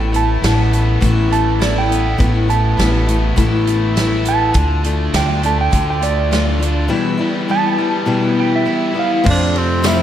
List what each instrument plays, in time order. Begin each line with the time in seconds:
Already playing: upright bass A1, steel-string acoustic guitar A2 E3 A3 B3 E4, overdriven electric guitar A3, electric slide guitar G5
0.13 steel-string acoustic guitar A3 B3 E4, electric slide guitar A5, closed hi-hat
0.42 upright bass A1, steel-string acoustic guitar E3 A3 B3 E4, snare, closed hi-hat
0.71 overdriven electric guitar A3, closed hi-hat
1.00 upright bass A1, steel-string acoustic guitar A2 E3 A3 B3 E4, kick, closed hi-hat
1.30 overdriven electric guitar A3, electric slide guitar A5, closed hi-hat
1.59 steel-string acoustic guitar E3 A3 B3 E4, electric slide guitar D5, snare, closed hi-hat
1.78 electric slide guitar G5
1.88 steel-string acoustic guitar A3 B3 E4, closed hi-hat
2.17 upright bass A1, steel-string acoustic guitar A2 E3 A3 B3 E4, kick, closed hi-hat
2.48 steel-string acoustic guitar A3 B3 E4, electric slide guitar A5, closed hi-hat
2.77 upright bass A1, steel-string acoustic guitar E3 A3 B3 E4, snare, closed hi-hat
3.06 steel-string acoustic guitar A3 B3 E4, closed hi-hat
3.36 upright bass A1, steel-string acoustic guitar A2 E3 A3 B3 E4, kick, closed hi-hat
3.65 overdriven electric guitar A3, closed hi-hat
3.96 steel-string acoustic guitar E3 A3 B3 E4, snare, closed hi-hat
4.24 overdriven electric guitar B3, closed hi-hat
4.29 electric slide guitar A5
4.54 upright bass D2, steel-string acoustic guitar D3 A3 D4 F4, kick, closed hi-hat
4.84 steel-string acoustic guitar A3 D4 F4, closed hi-hat
5.13 upright bass D2, steel-string acoustic guitar D3 A3, overdriven electric guitar D4, electric slide guitar G5, snare, closed hi-hat
5.17 steel-string acoustic guitar D4 F4
5.42 overdriven electric guitar A3, steel-string acoustic guitar D4 F4, electric slide guitar A5, closed hi-hat
5.46 steel-string acoustic guitar A3
5.61 electric slide guitar G5
5.71 upright bass D2, steel-string acoustic guitar D3 A3 D4 F4, kick, closed hi-hat
5.90 electric slide guitar G5
6.01 overdriven electric guitar A3, electric slide guitar D5, closed hi-hat
6.31 steel-string acoustic guitar D3 A3 D4 F4, snare, closed hi-hat
6.59 steel-string acoustic guitar A3 D4 F4, closed hi-hat
6.88 steel-string acoustic guitar E2 B2 E3 G3 B3 E4
7.17 steel-string acoustic guitar E3 G3 B3 E4
7.48 steel-string acoustic guitar E3 G3 B3 E4, electric slide guitar A5
7.78 steel-string acoustic guitar E3 G3 B3 E4
8.06 steel-string acoustic guitar E2 B2 E3 G3 B3 E4
8.37 overdriven electric guitar G3, electric slide guitar G5
8.56 electric slide guitar E5
8.65 steel-string acoustic guitar E3 G3 B3 E4
8.94 steel-string acoustic guitar E3 G3 B3 E4
8.99 electric slide guitar F5
9.24 steel-string acoustic guitar F2 C3 F3 A3 C4 F4, upright bass F2, tonewheel organ A3 A4, kick, crash
9.28 tonewheel organ C4 F4, tenor saxophone D4
9.54 overdriven electric guitar C3, ride
9.58 tenor saxophone C4
9.82 steel-string acoustic guitar F2 C3 F3 A3 C4 F4, snare, ride, tambourine
9.87 tenor saxophone E4